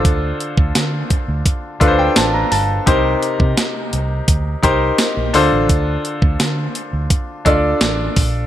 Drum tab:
HH |x-x-x-x-x-x-x-o-|x-x-x-x-x-x-x-o-|x-x-x-x-x-x-x-o-|
TB |----x-------x---|----x-------x---|----x-------x---|
SD |----o-------o---|----o-------o---|----o-------o---|
BD |o--o--o-o-o-----|o--o----o-o-----|o--o----o-o---o-|